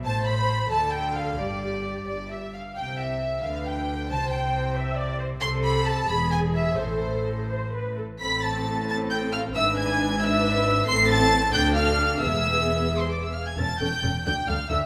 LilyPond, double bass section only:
\new Staff \with { instrumentName = "Double bass section" } { \clef bass \time 6/8 \key c \major \tempo 4. = 89 a,,4. d,4. | g,,4. g,,4 r8 | c,4. d,4. | c,2. |
\key a \minor c,4. e,,4. | a,,2~ a,,8 r8 | a,,2. | gis,,2. |
a,,4. d,4. | e,,2~ e,,8 r8 | e,,8 e,,8 e,,8 d,8 d,8 d,8 | }